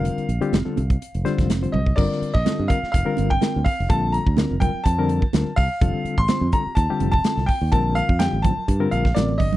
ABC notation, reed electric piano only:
X:1
M:4/4
L:1/16
Q:"Swing 16ths" 1/4=125
K:Fmix
V:1 name="Reed electric piano"
[D,G,CFB]2 z [D,G,CFG] z [D,G,CFA] z [Fc] z2 [D,G,CFc]2 z [D,G,CFc] z [Fc] | [D,G,CFB]3 z [D,G,CFA] z [D,G,CFB] z [FB] [D,G,CFB]2 z [D,G,CFB] z [FB] z | [D,G,CFA]3 z [D,G,CFB] z [D,G,CFB] F [FB] [D,G,CFB]2 z [D,G,CFB] z [FA] z | [D,G,CFA]3 z [D,G,CFc] z [D,G,CFA] z [Fc] [D,G,CFG]2 z [D,G,CFA] z [Fc] z |
[D,G,CFB]3 z [D,G,CFG] z [D,G,CFc] z [FB] [D,G,CFB]2 z [D,G,CFB] z c z |]